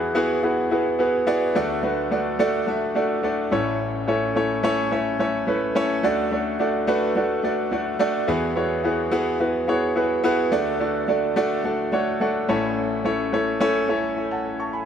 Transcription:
Already playing: E2 E3 B3 E4 F#4 G#4 B4
0.15 B3 E4 F#4 G#4 B4
0.43 B3 E4 F#4 G#4 B4
0.71 B3 E4 F#4 G#4 B4
0.99 B3 E4 F#4 G#4 B4
1.27 B3 E4 F#4 G#4 D5
1.55 D2 D3 A3 D4 F#4 A4 D5
1.83 A3 D4 F#4 A4 B4
2.11 A3 D4 F#4 A4 D5
2.39 A3 D4 F#4 A4 D5
2.67 A3 D4 F#4 A4 E5
2.95 A3 D4 F#4 A4 D5
3.23 A3 D4 F#4 A4 D5
3.51 A1 A2 A3 C#4 E4 A4 C#5
4.07 A3 C#4 E4 A4 C#5
4.35 A3 C#4 E4 A4 C#5
4.63 A3 C#4 E4 A4 C#5
4.91 A3 C#4 E4 A4 C#5
5.19 A3 C#4 E4 A4 C#5
5.47 A3 C#4 E4 A4 B4
5.75 A3 C#4 E4 A4 C#5
6.03 D2 D3 A3 D4 F#4 A4 D5
6.31 A3 D4 F#4 A4 D5
6.59 A3 D4 F#4 A4 D5
6.87 A3 D4 F#4 A4 B4
7.16 A3 D4 F#4 A4 D5
7.43 A3 D4 F#4 A4 D5
7.71 A3 D4 F#4 A4 D5
7.99 A3 D4 F#4 A4 D5
8.28 E2 E3 B3 E4 F#4 G#4 B4
8.56 B3 E4 F#4 G#4 C#5
8.84 B3 E4 F#4 G#4 B4
9.11 B3 E4 F#4 G#4 B4
9.40 B3 E4 F#4 G#4 B4
9.68 B3 E4 F#4 G#4 C#5
9.96 B3 E4 F#4 G#4 B4
10.24 B3 E4 F#4 G#4 B4
10.52 D2 D3 A3 D4 F#4 A4 D5
10.80 A3 D4 F#4 A4 D5
11.08 A3 D4 F#4 A4 D5
11.36 A3 D4 F#4 A4 D5
11.64 A3 D4 F#4 A4 D5
11.92 A3 D4 F#4 A4 C#5
12.20 A3 D4 F#4 A4 D5 F#5
12.48 A1 A2 A3 C#4 E4 A4 C#5 A5
13.04 A3 C#4 E4 A4 C#5
13.33 A3 C#4 E4 A4 C#5
13.60 A3 C#4 E4 A4 C#5
13.88 A3 C#4 E4 A4 C#5
14.31 F#5 A5
14.60 A5 C#6
14.73 G#5 B5

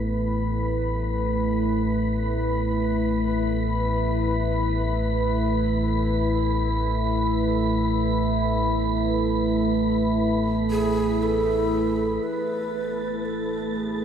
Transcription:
Already playing: A1 A2 A3 E4 B4 B5
10.71 G#4
11.22 A4
12.23 A1 A2 A3 B4 A6
13.25 A4
13.76 G#4

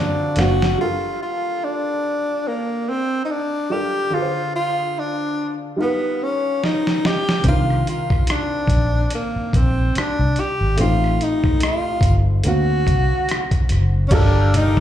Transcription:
Already playing: D3 A#3 C4 D4 F4 F#4 G#4
0.36 F#1 D3 A#3 C4 F#4 F5, snare, closed hi-hat
0.62 snare
0.77 G3 D4 F4 A4
0.82 A#4
1.23 F4
1.64 D4
2.48 A#3
2.89 C4
3.25 D#4
3.31 D4
3.70 G3 D4 F4 G4 A4 A#4
4.10 D3 D4 F4 G#4
4.15 B4
4.22 C5
4.56 F4
4.99 D4
5.76 G3 D#4 F4 A#4
5.82 B3 B4
6.23 C#4
6.64 D#4, snare
6.87 snare
7.05 G4, snare
7.29 snare
7.43 C2 C3 D#3 C4 D4, kick, closed hi-hat
7.48 F4 A#4
7.70 cross-stick
7.87 F4, closed hi-hat
8.10 kick, cross-stick
8.27 cross-stick, closed hi-hat
8.31 D4
8.67 A#1, kick, closed hi-hat
9.10 closed hi-hat
9.15 A#3
9.36 muted fingered electric bass stroke
9.53 A#1 C4, kick, closed hi-hat
9.95 D4, muted fingered electric bass stroke, cross-stick, closed hi-hat
10.19 C2
10.36 closed hi-hat
10.40 G4
10.61 G#1
10.77 A1 A2 A3 C4, closed hi-hat
10.81 D#4 F4 G4
11.04 cross-stick
11.21 D#4, closed hi-hat
11.44 kick, cross-stick
11.60 F4, cross-stick, closed hi-hat
12.01 G1, kick, closed hi-hat
12.44 D2 D3 A#3 C4, closed hi-hat
12.48 F#4 F5
12.87 C2, kick, closed hi-hat
13.29 cross-stick, closed hi-hat
13.51 kick, closed hi-hat
13.69 F#1, cross-stick, closed hi-hat
14.08 G1 G3 C#4 G4 D5 F5 G5 D6, kick, closed hi-hat, crash, muted conga
14.13 D4 F4 A4 A#4
14.54 D#4, closed hi-hat, muted conga, high conga

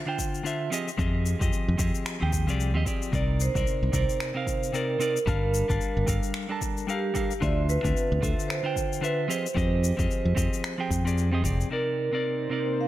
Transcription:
0.06 D3 D4 F4 C5 G5
0.19 kick, shaker
0.35 shaker
0.43 D3 D4 F4 C5 E5, shaker
0.70 F3 C4 G4 G#4 D#5, shaker
0.88 shaker
0.97 F2 F3 C4 G4 G#4 D#5, kick, shaker
1.26 shaker
1.39 F2 F3 C4 G4 G#4 D#5, kick, shaker
1.53 shaker
1.68 F2
1.78 F2 F3 C4 G4 G#4 D#5, kick, shaker
1.95 shaker
2.06 finger snap, shaker
2.20 D#2 F3 C4 G4 G#4 G5
2.33 kick, shaker
2.47 C2 F3 C4 G4 G#4 D5, shaker
2.60 shaker
2.74 D#2 F3 C4 G4 G#4 D#5
2.85 F3 C4 G4 G#4 D5, kick, shaker
3.02 shaker
3.12 C2 C3 C4 D#4 A#4 D5, kick, shaker
3.40 C5, shaker
3.54 C2 C3 C4 D#4 A#4 D5, kick, shaker
3.67 shaker
3.83 C2
3.92 C2 C3 C4 D#4 A#4 C5 D5, kick, shaker
4.09 shaker
4.20 finger snap, shaker
4.34 C3 C4 D#4 A#4 F5
4.47 kick, shaker
4.63 shaker
4.72 C3 C4 D#4 A#4 D5, shaker
4.99 C3 C4 D#4 A#4 D5, shaker
5.17 shaker
5.26 G1 G3 D4 A#4 F5 A5, kick, shaker
5.54 shaker
5.68 G1 G3 D4 A#4 F5 A5, kick, shaker
5.81 shaker
5.97 G1
6.06 G1 G3 D4 A4 A#4 F5, kick, shaker
6.23 shaker
6.34 finger snap, shaker
6.49 G3 D4 A4 A#4 A5
6.62 kick, shaker
6.77 shaker
6.87 G3 D4 G4 A4 A#4 F5, shaker
7.14 G3 D4 A4 A#4 F5, kick, shaker
7.31 shaker
7.40 D2 D3 D4 F4 C5 D5 E5, kick, shaker
7.69 B4, shaker
7.82 D2 D3 C4 D4 F4 E5, kick, shaker
7.97 shaker
8.12 D2
8.21 D2 D3 D4 F4 A4 C5 E5, kick, shaker
8.40 shaker
8.48 C5, finger snap, shaker
8.63 D3 D4 F4 C5 G5
8.76 kick, shaker
8.93 shaker
9.01 D3 D4 F4 B4 C5 E5, shaker
9.28 F3 C4 G4 G#4 C5 D#5, shaker
9.46 shaker
9.54 F2 F3 C4 G4 G#4 D#5, kick, shaker
9.84 shaker
9.97 F2 F3 C4 G4 G#4 D#5, kick, shaker
10.11 shaker
10.25 F2
10.35 F2 F3 C4 G4 G#4 D#5, kick, shaker
10.53 shaker
10.64 finger snap, shaker
10.78 F3 C4 G4 G#4 G5
10.90 F2, kick, shaker
11.04 F3 C4 G4 G#4 D5, shaker
11.18 shaker
11.31 F3 C4 G4 G#4 D#5
11.42 F1 F3 C4 G4 G#4 D5, kick, shaker
11.61 shaker
11.70 C3 A#3 C4 D#4 A#4 C5 D5
12.11 C3 C4 D#4 A#4 D5
12.50 C3 C4 D#4 A#4 D5
12.81 F5

